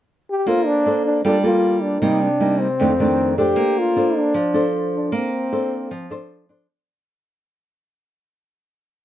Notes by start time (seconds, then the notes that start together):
0.30 G4
0.46 A#3 D4 F4 A4 C5
0.66 D4
0.86 D4 A4 C5
1.06 D4
1.25 G3 A#3 D4 F4 A4
1.43 A#3 F4 A4
1.83 D4
2.02 C3 G3 A#3 D#4
2.22 D4
2.40 G3 A#3 D#4
2.60 C4
2.80 F2 D#3 A3 D4
2.99 D#3 A3 D4
3.38 D4 G4 A4 C5
3.56 A#3
3.79 F4
3.96 D4 A4 C5
4.18 D4
4.34 F3
4.54 D4 A4 C5
4.96 D4
5.12 A#3 C4
5.52 D4 A4 C5
5.91 F3
6.10 D4 A4 C5
6.49 D4 A4 C5